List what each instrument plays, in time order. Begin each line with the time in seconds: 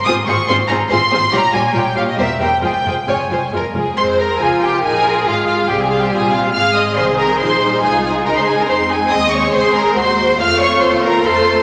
0.05 double bass section G#1, cello section G#2, viola section C4 F4, violin section G#4 C5 D#6
0.26 double bass section G#1, cello section G#2, viola section C4 F4, violin section G#4 C5 C#6
0.47 double bass section G#1, cello section G#2, viola section C4 F4, violin section G#4 C5 C6
0.67 double bass section G#1, cello section G#2, viola section C4 F4, violin section G#4 C5 A#5
0.89 double bass section G#1, cello section G#2, viola section C4 F4, violin section G#4 C5 C6
1.10 double bass section G#1, cello section G#2, viola section C4 F4, violin section G#4 C5
1.31 double bass section A#1, cello section A#2, viola section G3 F4, violin section G4 C#5 A#5
1.53 double bass section A#1, cello section A#2, viola section G3 F4, violin section G4 C#5 G#5
1.73 double bass section A#1, cello section A#2, viola section G3 F4, violin section G4 C#5 G5
1.95 double bass section A#1, cello section A#2, viola section G3 F4, violin section G4 C#5 F5
2.09 violin section D#5
2.17 double bass section E1, cello section E2, viola section G3 G4, violin section A#4 C5 E5
2.40 double bass section E1, cello section E2, viola section G3 G4, violin section A#4 C5 G5
2.62 double bass section F1, cello section F2, viola section G#3 F4, violin section G#4 C5 G5
2.85 double bass section F1, cello section F2, viola section G#3 F4, violin section G#4 C5
3.07 double bass section F1, cello section F2, viola section G#3 F4, violin section C#5 G#5
3.29 double bass section F1, cello section F2, viola section G#3 F4, violin section C5
3.52 double bass section F1, cello section F2, viola section G#3 F4
3.56 violin section A#4
3.74 double bass section F1, cello section F2, viola section G#3 F4, violin section G#4
3.96 double bass section F2, viola section G#3 C4, violin section C5 C6
4.18 violin section A#4 A#5
4.38 double bass section C#2, viola section F3 F4, cello section F4, violin section G#4 G#5
4.61 violin section G4 G5
4.82 double bass section A#1, viola section D#4, violin section G#4 G#5, cello section A#4
5.06 viola section F4
5.26 double bass section G#1, viola section G#3 F4, violin section F4 F5, cello section G#4
5.46 violin section F4 F5
5.67 double bass section C2, viola section G3 C4, violin section G4 G5
5.79 violin section G#4 G#5
5.88 violin section F4 F5
6.00 violin section G4 G5
6.10 double bass section A#1, cello section F4, violin section G#4 G#5
6.32 violin section F4 F5
6.53 double bass section G#1, viola section G#3 C4, cello section G#4, violin section F5 F6
6.73 violin section D#5 D#6
6.95 double bass section C2, viola section D#3, violin section C5 C6
7.18 violin section A#4 A#5
7.39 double bass section A#1, viola section F3 D#4, violin section C5 C6
7.62 viola section G3
7.81 double bass section C2, viola section G#3, cello section F4, violin section G#4 G#5
8.03 violin section G#4 G#5
8.25 double bass section C#2, cello section D#4, violin section A#4 A#5
8.37 violin section C5 C6
8.47 violin section G#4 G#5
8.59 violin section A#4 A#5
8.68 double bass section F2, viola section G#3 D#4, cello section C4, violin section C5 C6
8.89 violin section G#4 G#5
9.10 double bass section D#2, viola section C4, violin section D#5 D#6
9.31 violin section C#5 C#6
9.52 double bass section C#2, cello section G#4, violin section C5 C6
9.73 violin section A#4 A#5
9.96 double bass section D#2, cello section F#4, violin section C5 C6
10.39 double bass section F2, viola section A3 C4, cello section F4, violin section F5 F6
10.60 violin section C#5 C#6
10.81 double bass section D#2, violin section C5 C6
11.03 violin section A#4 A#5
11.24 double bass section F2, viola section A3 F4, cello section A4, violin section C5 C6
11.45 viola section A3